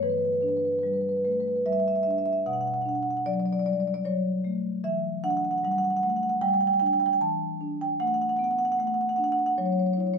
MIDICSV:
0, 0, Header, 1, 2, 480
1, 0, Start_track
1, 0, Tempo, 811908
1, 12, Time_signature, 3, 2, 24, 8
1, 1452, Tempo, 791557
1, 6138, End_track
2, 0, Start_track
2, 0, Title_t, "Marimba"
2, 0, Program_c, 0, 12
2, 15, Note_on_c, 0, 52, 54
2, 17, Note_on_c, 0, 71, 66
2, 57, Note_off_c, 0, 71, 0
2, 57, Note_on_c, 0, 71, 53
2, 105, Note_off_c, 0, 71, 0
2, 105, Note_on_c, 0, 71, 54
2, 148, Note_off_c, 0, 71, 0
2, 148, Note_on_c, 0, 71, 56
2, 194, Note_off_c, 0, 71, 0
2, 194, Note_on_c, 0, 71, 58
2, 241, Note_off_c, 0, 71, 0
2, 241, Note_on_c, 0, 71, 54
2, 251, Note_on_c, 0, 62, 52
2, 286, Note_off_c, 0, 71, 0
2, 286, Note_on_c, 0, 71, 59
2, 336, Note_off_c, 0, 71, 0
2, 336, Note_on_c, 0, 71, 56
2, 384, Note_off_c, 0, 71, 0
2, 384, Note_on_c, 0, 71, 56
2, 427, Note_off_c, 0, 71, 0
2, 427, Note_on_c, 0, 71, 51
2, 466, Note_off_c, 0, 71, 0
2, 466, Note_on_c, 0, 71, 58
2, 492, Note_on_c, 0, 55, 50
2, 513, Note_off_c, 0, 71, 0
2, 513, Note_on_c, 0, 71, 55
2, 553, Note_off_c, 0, 71, 0
2, 553, Note_on_c, 0, 71, 55
2, 597, Note_off_c, 0, 71, 0
2, 597, Note_on_c, 0, 71, 54
2, 634, Note_off_c, 0, 62, 0
2, 644, Note_off_c, 0, 71, 0
2, 644, Note_on_c, 0, 71, 55
2, 692, Note_off_c, 0, 71, 0
2, 692, Note_on_c, 0, 71, 52
2, 736, Note_off_c, 0, 71, 0
2, 736, Note_on_c, 0, 57, 42
2, 736, Note_on_c, 0, 71, 57
2, 780, Note_off_c, 0, 71, 0
2, 780, Note_on_c, 0, 71, 51
2, 829, Note_off_c, 0, 71, 0
2, 829, Note_on_c, 0, 71, 57
2, 875, Note_off_c, 0, 71, 0
2, 875, Note_on_c, 0, 71, 54
2, 882, Note_off_c, 0, 55, 0
2, 921, Note_off_c, 0, 71, 0
2, 921, Note_on_c, 0, 71, 54
2, 955, Note_off_c, 0, 71, 0
2, 979, Note_off_c, 0, 57, 0
2, 980, Note_on_c, 0, 55, 52
2, 980, Note_on_c, 0, 76, 88
2, 1020, Note_off_c, 0, 76, 0
2, 1020, Note_on_c, 0, 76, 72
2, 1064, Note_off_c, 0, 76, 0
2, 1064, Note_on_c, 0, 76, 71
2, 1110, Note_off_c, 0, 76, 0
2, 1110, Note_on_c, 0, 76, 72
2, 1157, Note_off_c, 0, 76, 0
2, 1157, Note_on_c, 0, 76, 71
2, 1201, Note_off_c, 0, 76, 0
2, 1201, Note_on_c, 0, 76, 73
2, 1222, Note_on_c, 0, 62, 50
2, 1245, Note_off_c, 0, 76, 0
2, 1245, Note_on_c, 0, 76, 72
2, 1291, Note_off_c, 0, 76, 0
2, 1291, Note_on_c, 0, 76, 68
2, 1333, Note_off_c, 0, 76, 0
2, 1333, Note_on_c, 0, 76, 76
2, 1360, Note_off_c, 0, 55, 0
2, 1375, Note_off_c, 0, 76, 0
2, 1375, Note_on_c, 0, 76, 66
2, 1431, Note_off_c, 0, 52, 0
2, 1436, Note_off_c, 0, 76, 0
2, 1456, Note_off_c, 0, 62, 0
2, 1456, Note_on_c, 0, 47, 59
2, 1456, Note_on_c, 0, 78, 79
2, 1498, Note_off_c, 0, 78, 0
2, 1498, Note_on_c, 0, 78, 66
2, 1544, Note_off_c, 0, 78, 0
2, 1544, Note_on_c, 0, 78, 69
2, 1583, Note_off_c, 0, 78, 0
2, 1583, Note_on_c, 0, 78, 64
2, 1623, Note_off_c, 0, 78, 0
2, 1623, Note_on_c, 0, 78, 70
2, 1670, Note_off_c, 0, 78, 0
2, 1670, Note_on_c, 0, 78, 64
2, 1696, Note_on_c, 0, 62, 52
2, 1713, Note_off_c, 0, 78, 0
2, 1713, Note_on_c, 0, 78, 70
2, 1752, Note_off_c, 0, 78, 0
2, 1752, Note_on_c, 0, 78, 62
2, 1798, Note_off_c, 0, 78, 0
2, 1798, Note_on_c, 0, 78, 69
2, 1845, Note_off_c, 0, 78, 0
2, 1845, Note_on_c, 0, 78, 63
2, 1884, Note_off_c, 0, 78, 0
2, 1884, Note_on_c, 0, 78, 67
2, 1915, Note_off_c, 0, 78, 0
2, 1939, Note_on_c, 0, 54, 53
2, 1940, Note_on_c, 0, 74, 82
2, 1984, Note_off_c, 0, 74, 0
2, 1984, Note_on_c, 0, 74, 63
2, 2022, Note_off_c, 0, 74, 0
2, 2022, Note_on_c, 0, 74, 70
2, 2058, Note_off_c, 0, 74, 0
2, 2058, Note_on_c, 0, 74, 67
2, 2077, Note_off_c, 0, 62, 0
2, 2101, Note_off_c, 0, 74, 0
2, 2101, Note_on_c, 0, 74, 73
2, 2142, Note_off_c, 0, 74, 0
2, 2142, Note_on_c, 0, 74, 62
2, 2181, Note_on_c, 0, 55, 46
2, 2183, Note_off_c, 0, 74, 0
2, 2183, Note_on_c, 0, 74, 67
2, 2224, Note_off_c, 0, 74, 0
2, 2224, Note_on_c, 0, 74, 62
2, 2267, Note_off_c, 0, 74, 0
2, 2267, Note_on_c, 0, 74, 68
2, 2312, Note_off_c, 0, 74, 0
2, 2312, Note_on_c, 0, 74, 67
2, 2318, Note_off_c, 0, 54, 0
2, 2353, Note_off_c, 0, 74, 0
2, 2353, Note_on_c, 0, 74, 72
2, 2395, Note_off_c, 0, 74, 0
2, 2415, Note_off_c, 0, 55, 0
2, 2419, Note_on_c, 0, 54, 53
2, 2421, Note_on_c, 0, 73, 80
2, 2645, Note_off_c, 0, 73, 0
2, 2658, Note_on_c, 0, 57, 54
2, 2798, Note_off_c, 0, 54, 0
2, 2868, Note_off_c, 0, 47, 0
2, 2895, Note_off_c, 0, 57, 0
2, 2897, Note_on_c, 0, 52, 63
2, 2898, Note_on_c, 0, 76, 81
2, 3128, Note_off_c, 0, 76, 0
2, 3139, Note_on_c, 0, 62, 57
2, 3139, Note_on_c, 0, 78, 90
2, 3179, Note_off_c, 0, 78, 0
2, 3179, Note_on_c, 0, 78, 69
2, 3218, Note_off_c, 0, 78, 0
2, 3218, Note_on_c, 0, 78, 80
2, 3265, Note_off_c, 0, 78, 0
2, 3265, Note_on_c, 0, 78, 70
2, 3303, Note_off_c, 0, 78, 0
2, 3303, Note_on_c, 0, 78, 77
2, 3344, Note_off_c, 0, 78, 0
2, 3344, Note_on_c, 0, 78, 69
2, 3380, Note_on_c, 0, 55, 56
2, 3387, Note_off_c, 0, 78, 0
2, 3387, Note_on_c, 0, 78, 77
2, 3427, Note_off_c, 0, 78, 0
2, 3427, Note_on_c, 0, 78, 76
2, 3469, Note_off_c, 0, 78, 0
2, 3469, Note_on_c, 0, 78, 80
2, 3506, Note_off_c, 0, 78, 0
2, 3506, Note_on_c, 0, 78, 71
2, 3521, Note_off_c, 0, 62, 0
2, 3543, Note_off_c, 0, 78, 0
2, 3543, Note_on_c, 0, 78, 75
2, 3580, Note_off_c, 0, 78, 0
2, 3580, Note_on_c, 0, 78, 76
2, 3620, Note_off_c, 0, 78, 0
2, 3620, Note_on_c, 0, 78, 78
2, 3621, Note_on_c, 0, 57, 51
2, 3659, Note_off_c, 0, 78, 0
2, 3659, Note_on_c, 0, 78, 69
2, 3700, Note_off_c, 0, 78, 0
2, 3700, Note_on_c, 0, 78, 76
2, 3740, Note_off_c, 0, 78, 0
2, 3740, Note_on_c, 0, 78, 73
2, 3760, Note_off_c, 0, 55, 0
2, 3780, Note_off_c, 0, 78, 0
2, 3780, Note_on_c, 0, 78, 74
2, 3831, Note_off_c, 0, 78, 0
2, 3852, Note_on_c, 0, 79, 103
2, 3853, Note_on_c, 0, 55, 56
2, 3856, Note_off_c, 0, 57, 0
2, 3895, Note_off_c, 0, 79, 0
2, 3895, Note_on_c, 0, 79, 81
2, 3927, Note_off_c, 0, 79, 0
2, 3927, Note_on_c, 0, 79, 86
2, 3969, Note_off_c, 0, 79, 0
2, 3969, Note_on_c, 0, 79, 79
2, 4009, Note_off_c, 0, 79, 0
2, 4009, Note_on_c, 0, 79, 87
2, 4047, Note_off_c, 0, 79, 0
2, 4047, Note_on_c, 0, 79, 82
2, 4084, Note_off_c, 0, 79, 0
2, 4084, Note_on_c, 0, 79, 89
2, 4095, Note_on_c, 0, 62, 53
2, 4124, Note_off_c, 0, 79, 0
2, 4124, Note_on_c, 0, 79, 81
2, 4165, Note_off_c, 0, 79, 0
2, 4165, Note_on_c, 0, 79, 84
2, 4207, Note_off_c, 0, 79, 0
2, 4207, Note_on_c, 0, 79, 85
2, 4235, Note_off_c, 0, 55, 0
2, 4244, Note_off_c, 0, 79, 0
2, 4244, Note_on_c, 0, 79, 87
2, 4287, Note_off_c, 0, 79, 0
2, 4287, Note_on_c, 0, 79, 83
2, 4310, Note_off_c, 0, 52, 0
2, 4312, Note_off_c, 0, 79, 0
2, 4333, Note_off_c, 0, 62, 0
2, 4336, Note_on_c, 0, 81, 91
2, 4337, Note_on_c, 0, 52, 64
2, 4576, Note_on_c, 0, 62, 54
2, 4677, Note_off_c, 0, 81, 0
2, 4701, Note_on_c, 0, 79, 86
2, 4813, Note_on_c, 0, 57, 54
2, 4814, Note_off_c, 0, 79, 0
2, 4814, Note_on_c, 0, 78, 93
2, 4859, Note_off_c, 0, 78, 0
2, 4859, Note_on_c, 0, 78, 78
2, 4899, Note_off_c, 0, 78, 0
2, 4899, Note_on_c, 0, 78, 75
2, 4944, Note_off_c, 0, 78, 0
2, 4944, Note_on_c, 0, 78, 70
2, 4954, Note_off_c, 0, 62, 0
2, 4991, Note_off_c, 0, 78, 0
2, 4991, Note_on_c, 0, 78, 76
2, 5035, Note_off_c, 0, 78, 0
2, 5035, Note_on_c, 0, 78, 78
2, 5050, Note_on_c, 0, 59, 52
2, 5081, Note_off_c, 0, 78, 0
2, 5081, Note_on_c, 0, 78, 78
2, 5123, Note_off_c, 0, 78, 0
2, 5123, Note_on_c, 0, 78, 75
2, 5169, Note_off_c, 0, 78, 0
2, 5169, Note_on_c, 0, 78, 83
2, 5193, Note_off_c, 0, 57, 0
2, 5208, Note_off_c, 0, 78, 0
2, 5208, Note_on_c, 0, 78, 76
2, 5250, Note_off_c, 0, 78, 0
2, 5250, Note_on_c, 0, 78, 84
2, 5288, Note_off_c, 0, 59, 0
2, 5292, Note_on_c, 0, 57, 55
2, 5299, Note_off_c, 0, 78, 0
2, 5299, Note_on_c, 0, 78, 70
2, 5343, Note_off_c, 0, 78, 0
2, 5343, Note_on_c, 0, 78, 77
2, 5385, Note_off_c, 0, 78, 0
2, 5385, Note_on_c, 0, 78, 73
2, 5427, Note_off_c, 0, 78, 0
2, 5427, Note_on_c, 0, 78, 77
2, 5476, Note_off_c, 0, 78, 0
2, 5476, Note_on_c, 0, 78, 77
2, 5519, Note_off_c, 0, 78, 0
2, 5519, Note_on_c, 0, 78, 84
2, 5531, Note_on_c, 0, 62, 53
2, 5565, Note_off_c, 0, 78, 0
2, 5565, Note_on_c, 0, 78, 78
2, 5615, Note_off_c, 0, 78, 0
2, 5615, Note_on_c, 0, 78, 84
2, 5657, Note_off_c, 0, 78, 0
2, 5657, Note_on_c, 0, 78, 74
2, 5673, Note_off_c, 0, 57, 0
2, 5701, Note_off_c, 0, 78, 0
2, 5701, Note_on_c, 0, 78, 84
2, 5746, Note_off_c, 0, 52, 0
2, 5746, Note_off_c, 0, 78, 0
2, 5769, Note_off_c, 0, 62, 0
2, 5771, Note_on_c, 0, 73, 80
2, 5772, Note_on_c, 0, 54, 63
2, 5817, Note_off_c, 0, 73, 0
2, 5817, Note_on_c, 0, 73, 65
2, 5858, Note_off_c, 0, 73, 0
2, 5858, Note_on_c, 0, 73, 65
2, 5900, Note_off_c, 0, 73, 0
2, 5900, Note_on_c, 0, 73, 66
2, 5944, Note_off_c, 0, 73, 0
2, 5944, Note_on_c, 0, 73, 66
2, 5986, Note_off_c, 0, 73, 0
2, 5986, Note_on_c, 0, 73, 66
2, 6008, Note_on_c, 0, 64, 49
2, 6028, Note_off_c, 0, 73, 0
2, 6028, Note_on_c, 0, 73, 70
2, 6068, Note_off_c, 0, 73, 0
2, 6068, Note_on_c, 0, 73, 63
2, 6109, Note_off_c, 0, 73, 0
2, 6109, Note_on_c, 0, 73, 73
2, 6138, Note_off_c, 0, 54, 0
2, 6138, Note_off_c, 0, 64, 0
2, 6138, Note_off_c, 0, 73, 0
2, 6138, End_track
0, 0, End_of_file